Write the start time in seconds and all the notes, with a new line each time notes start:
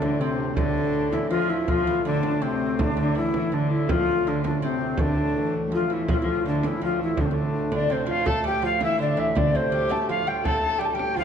Already playing: D2 A2 D4
0.00 D2 D3, frame drum
0.19 C3 C4, frame drum
0.37 C3
0.55 D2 D3 D4, frame drum
1.11 E2 E4, frame drum
1.29 F2 F3 F4, frame drum
1.49 E4
1.67 F2 F3 F4, frame drum
1.87 E2
2.05 D2 D3 D4
2.23 D2, frame drum
2.41 C3 C4, frame drum
2.79 D2 D3 D4, frame drum
2.97 D2 D3, frame drum
3.15 E2 E3 E4
3.34 E3, frame drum
3.52 D2 D3 D4, frame drum
3.70 E4, frame drum
3.89 D2 F2 A2 F3 F4, frame drum
4.25 D2 D3 D4
4.43 D2 D4, frame drum
4.61 C3 C4, frame drum
4.79 C3
4.94 E3
4.98 D2 D3 D4, frame drum
5.35 E3
5.67 F3 G3
5.72 F2 F4, frame drum
5.90 E2 E3 E4
6.08 F2 F3 F4, frame drum
6.18 F3 E4
6.22 F2 F4
6.45 D2 D3 D4
6.63 E2 E4, frame drum
6.80 F2 F3 F4, frame drum
6.99 E3 E4
7.16 D2 D3, frame drum
7.20 D4
7.25 C4
7.30 D2 D3 D4
7.72 D3 D4 D5, frame drum
7.90 C3 C4 C5
8.07 F3 F4 F5, frame drum
8.26 D2 A2 A3 A4 A5, frame drum
8.44 G3 G4 G5
8.62 F3 F4 F5
8.81 E3 E4 E5, frame drum
8.99 D3 D4 D5, frame drum
9.17 E3 E5, frame drum
9.35 D3 D4 D5, frame drum
9.51 C3 C4 C5
9.71 G3 G4
9.90 A3 A5, frame drum
10.02 G4
10.09 F3 F4 F5, frame drum
10.27 G3 G5, frame drum
10.44 A3 A4 A5, frame drum
10.64 A4
10.78 G3 A3 G4 G5
10.85 A5
10.92 G3 G4 G5
10.99 frame drum
11.16 F3 F4 F5, frame drum